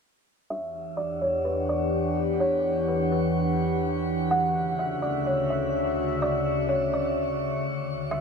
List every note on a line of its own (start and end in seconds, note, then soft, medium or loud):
0.50 4.27 E2 medium
0.50 4.27 E3 medium
0.50 4.27 D4 medium
0.50 4.27 G4 medium
0.50 0.95 E5 loud
0.50 4.27 F#5 medium
0.97 1.20 D5 medium
1.22 1.44 C#5 medium
1.45 1.68 B4 medium
1.69 2.37 D5 medium
2.40 2.85 C#5 loud
2.88 3.11 B4 medium
3.12 4.27 B4 medium
4.31 8.08 D2 medium
4.31 8.08 C#3 medium
4.31 8.21 D3 medium
4.31 8.08 F#4 medium
4.31 8.08 E5 medium
4.31 4.76 F#5 loud
4.79 5.02 E5 medium
5.02 5.25 D5 medium
5.27 5.49 C#5 medium
5.50 6.18 E5 medium
6.22 6.67 D5 medium
6.69 6.92 C#5 medium
6.93 7.61 D5 medium
8.11 8.21 G2 medium
8.11 8.21 B3 medium
8.11 8.21 G4 medium
8.11 8.21 D5 medium
8.11 8.21 E5 medium